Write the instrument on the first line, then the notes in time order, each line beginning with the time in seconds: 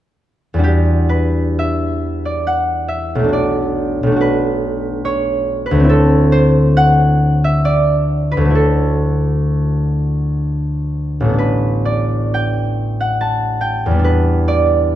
harp
0.54 E2 G3
0.59 D4 F#4
0.64 G4
1.09 B4
1.59 E5
2.25 D5
2.47 F#5
2.88 E5
3.15 B1
3.19 A3
3.24 D4
3.29 F#4
3.33 D5
4.03 B1 A3
4.12 D4
4.16 F#4
4.21 B4
5.05 C#5
5.66 B4
5.71 D2 A3
5.80 C4
5.84 E4
5.90 A4
6.32 C5
6.77 F#5
7.44 E5
7.65 D5
8.32 B4
8.37 D2
8.41 F#3
8.45 A3
8.50 E4
8.55 A4
11.20 A1 A3
11.29 B3
11.33 D4
11.39 B4
11.85 D5
12.34 G5
13.00 F#5
13.21 A5
13.61 G5
13.86 E2
13.91 G3
13.95 B3
13.99 D4
14.04 B4
14.48 D5